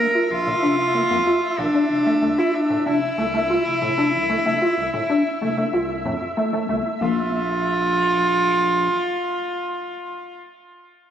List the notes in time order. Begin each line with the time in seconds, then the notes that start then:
Already playing: A#4 E5
0.15 F4
0.31 A#1 F4
0.47 A#2
0.62 F1 D4
0.94 A#3
1.10 F2 A#3
1.26 F4
1.58 A#1 A#2 D4
1.74 D4
1.90 F1
2.06 A3
2.22 C2 A3
2.38 E4 F4
2.54 D4
2.70 A2
2.86 F1 D4 E4
3.18 C2 A3
3.34 A3
3.50 F4
3.66 F1
3.82 A2
3.98 D4
4.14 C2
4.30 A3
4.46 F1 A3
4.62 F4
4.78 C2
4.94 A2
5.09 D4
5.41 F1 A3
5.57 A3
5.73 C2 F4
6.05 F2 A2
6.37 A3
6.53 A3
6.69 C2 A3
7.01 A#1 A#3 F4